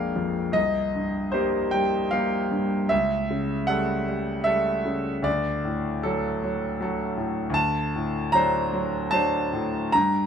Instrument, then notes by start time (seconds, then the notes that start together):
grand piano
Already playing: A#1 F2 G#3 A#3 D4 F5 G5
0.16 F2
0.52 C2 D#5
0.95 G2
1.32 G3 A#3 G4 C5
1.71 G3 G5
2.11 G3 A#3 G4 F5
2.51 G2
2.89 C#2 E5
3.30 C#3
3.67 G3 A3 A4 F#5
4.08 G3
4.44 G3 A3 A4 E5
4.85 C#3
5.22 D2 D5
5.65 A2
6.03 F#3 A3 A4
6.44 F#3
6.81 F#3 A3 A4
7.17 A2
7.50 D2
7.54 A5
7.96 A2
8.32 F#3 D4 C5 A#5
8.73 F#3
9.11 F#3 D4 C5 A5
9.53 A2
9.92 G2 A#5